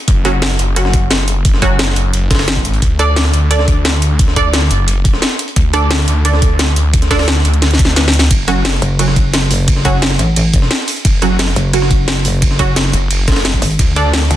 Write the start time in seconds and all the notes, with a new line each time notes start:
0.08 F#1, kick, closed hi-hat
0.25 F#3 C#4 F#4, cross-stick, closed hi-hat
0.42 snare, closed hi-hat, open hi-hat
0.51 cross-stick, snare
0.59 F#1, closed hi-hat
0.76 F#3 C#4 F#4, cross-stick, closed hi-hat
0.85 cross-stick, snare
0.93 kick, closed hi-hat
1.11 snare, closed hi-hat
1.28 closed hi-hat
1.45 kick, closed hi-hat
1.54 snare
1.62 F#3 C#4 F#4, kick, cross-stick, closed hi-hat
1.79 snare, closed hi-hat
1.88 cross-stick, snare
1.96 F#1, closed hi-hat
2.13 F#1, closed hi-hat
2.31 F#1, kick, snare, closed hi-hat, open hi-hat
2.35 snare, open hi-hat
2.39 snare, open hi-hat
2.48 snare, closed hi-hat
2.56 kick
2.65 G#1, closed hi-hat
2.74 closed hi-hat
2.82 D2, kick, closed hi-hat
2.99 D4 A4 D5, cross-stick, closed hi-hat
3.16 snare, closed hi-hat, open hi-hat
3.25 cross-stick, snare
3.34 D2, closed hi-hat
3.51 D4 A4 D5, cross-stick, closed hi-hat
3.59 cross-stick, snare
3.68 kick, closed hi-hat
3.85 snare, closed hi-hat
4.02 closed hi-hat
4.19 kick, closed hi-hat
4.28 snare
4.36 D4 A4 D5, kick, cross-stick, closed hi-hat
4.54 snare, closed hi-hat
4.62 cross-stick, snare
4.71 F#1, closed hi-hat
4.88 closed hi-hat
5.05 kick, closed hi-hat
5.14 snare
5.22 snare, closed hi-hat
5.39 closed hi-hat
5.48 closed hi-hat
5.56 D2, kick, closed hi-hat
5.73 D4 A4 D5, cross-stick, closed hi-hat
5.91 snare, closed hi-hat, open hi-hat
5.99 cross-stick, snare
6.08 D2, closed hi-hat
6.25 D4 A4 D5, cross-stick, closed hi-hat
6.33 cross-stick, snare
6.42 kick, closed hi-hat
6.59 snare, closed hi-hat
6.76 closed hi-hat
6.94 kick, closed hi-hat
7.02 snare, closed hi-hat
7.11 D4 A4 D5, kick, cross-stick, snare, closed hi-hat, open hi-hat
7.19 snare, open hi-hat
7.28 snare, closed hi-hat
7.36 cross-stick, snare
7.45 D2, closed hi-hat
7.54 closed hi-hat
7.62 snare, closed hi-hat, open hi-hat
7.71 snare, closed hi-hat
7.79 kick, closed hi-hat
7.85 snare
7.88 snare
7.96 snare, closed hi-hat
8.08 snare
8.13 closed hi-hat
8.19 snare, closed hi-hat
8.31 F#1, kick, closed hi-hat, ride bell
8.48 F#3 C#4 F#4, cross-stick, closed hi-hat
8.65 snare, closed hi-hat, open hi-hat, ride bell
8.73 cross-stick, snare
8.82 F#1, closed hi-hat
8.99 F#3 C#4 F#4, cross-stick, closed hi-hat, ride bell
9.08 cross-stick, snare
9.16 kick, closed hi-hat
9.34 snare, closed hi-hat, ride bell
9.51 closed hi-hat, open hi-hat
9.68 kick, closed hi-hat, ride bell
9.76 snare
9.85 F#3 C#4 F#4, kick, cross-stick, closed hi-hat
10.02 snare, closed hi-hat, ride bell
10.11 cross-stick, snare
10.19 A1, closed hi-hat
10.36 closed hi-hat, ride bell
10.54 kick, closed hi-hat
10.62 snare
10.71 snare, closed hi-hat, ride bell
10.88 closed hi-hat, open hi-hat
10.96 closed hi-hat
11.05 F#1, kick, closed hi-hat, ride bell
11.22 F#3 C#4 F#4, cross-stick, closed hi-hat
11.39 snare, closed hi-hat, open hi-hat, ride bell
11.48 cross-stick, snare
11.56 F#1, closed hi-hat
11.73 F#3 C#4 F#4, cross-stick, closed hi-hat, ride bell
11.82 cross-stick, snare
11.91 kick, closed hi-hat
12.08 snare, closed hi-hat, ride bell
12.25 closed hi-hat, open hi-hat
12.42 kick, closed hi-hat, ride bell
12.51 snare
12.59 F#3 C#4 F#4, kick, cross-stick, closed hi-hat
12.76 snare, closed hi-hat, ride bell
12.85 cross-stick, snare
12.93 F#1, closed hi-hat
13.11 F#1, closed hi-hat, ride bell
13.28 F#1, kick, snare, closed hi-hat, open hi-hat
13.32 snare, open hi-hat
13.36 snare, open hi-hat
13.45 snare, closed hi-hat, ride bell
13.53 kick
13.62 G#1, closed hi-hat, open hi-hat
13.71 closed hi-hat
13.79 D2, kick, closed hi-hat, ride bell
13.96 D4 A4 D5, cross-stick, closed hi-hat
14.13 snare, closed hi-hat, open hi-hat, ride bell
14.22 cross-stick, snare
14.31 D2, closed hi-hat